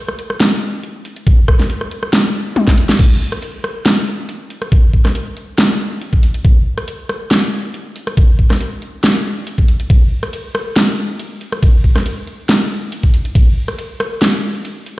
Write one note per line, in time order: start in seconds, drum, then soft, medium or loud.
0.08 cross-stick medium
0.19 closed hi-hat medium
0.30 cross-stick medium
0.40 snare loud
0.40 closed hi-hat medium
0.83 closed hi-hat medium
1.05 open hi-hat loud
1.16 closed hi-hat medium
1.27 kick loud
1.27 closed hi-hat medium
1.48 kick medium
1.48 cross-stick medium
1.59 snare soft
1.59 closed hi-hat medium
1.70 closed hi-hat medium
1.81 cross-stick medium
1.91 closed hi-hat medium
2.03 cross-stick medium
2.13 snare loud
2.13 closed hi-hat medium
2.56 closed hi-hat medium
2.56 high tom medium
2.67 kick medium
2.67 snare medium
2.78 open hi-hat loud
2.89 snare medium
2.89 closed hi-hat medium
2.99 kick loud
2.99 closed hi-hat medium
2.99 crash loud
3.32 cross-stick medium
3.32 closed hi-hat medium
3.42 closed hi-hat medium
3.64 cross-stick medium
3.64 closed hi-hat medium
3.86 snare loud
3.86 closed hi-hat medium
4.29 closed hi-hat medium
4.50 open hi-hat loud
4.62 cross-stick medium
4.62 closed hi-hat medium
4.72 kick loud
4.72 closed hi-hat medium
4.93 kick medium
5.05 cross-stick medium
5.05 snare soft
5.05 closed hi-hat medium
5.15 closed hi-hat medium
5.37 closed hi-hat medium
5.58 snare loud
5.58 closed hi-hat medium
6.01 closed hi-hat medium
6.13 kick medium
6.23 open hi-hat loud
6.34 closed hi-hat medium
6.45 kick loud
6.45 closed hi-hat medium
6.78 cross-stick medium
6.78 closed hi-hat medium
6.88 closed hi-hat medium
7.09 cross-stick medium
7.09 closed hi-hat medium
7.31 snare loud
7.31 closed hi-hat medium
7.74 closed hi-hat medium
7.96 open hi-hat medium
8.07 cross-stick medium
8.07 closed hi-hat medium
8.17 kick loud
8.17 closed hi-hat medium
8.39 kick medium
8.50 cross-stick medium
8.50 snare soft
8.50 closed hi-hat medium
8.60 closed hi-hat medium
8.82 closed hi-hat medium
9.04 snare loud
9.04 closed hi-hat medium
9.47 closed hi-hat medium
9.58 kick medium
9.68 open hi-hat medium
9.80 closed hi-hat medium
9.90 kick loud
9.90 closed hi-hat medium
9.90 ride medium
10.23 cross-stick medium
10.23 closed hi-hat medium
10.33 closed hi-hat medium
10.33 ride soft
10.55 cross-stick medium
10.55 closed hi-hat medium
10.76 snare loud
10.76 closed hi-hat medium
10.76 ride medium
11.20 closed hi-hat medium
11.20 ride soft
11.41 open hi-hat medium
11.52 cross-stick medium
11.52 closed hi-hat medium
11.63 kick loud
11.63 closed hi-hat medium
11.63 ride medium
11.84 kick medium
11.96 cross-stick medium
11.96 snare soft
11.96 closed hi-hat medium
12.06 closed hi-hat medium
12.06 ride soft
12.27 closed hi-hat medium
12.49 snare loud
12.49 closed hi-hat medium
12.49 ride medium
12.92 closed hi-hat medium
12.92 ride soft
13.03 kick medium
13.14 open hi-hat medium
13.25 closed hi-hat medium
13.35 kick loud
13.35 closed hi-hat medium
13.35 ride medium
13.68 cross-stick medium
13.68 closed hi-hat medium
13.79 closed hi-hat medium
13.79 ride medium
14.00 cross-stick medium
14.00 closed hi-hat medium
14.22 snare loud
14.22 closed hi-hat medium
14.22 ride medium
14.65 closed hi-hat medium
14.65 ride soft
14.86 open hi-hat loud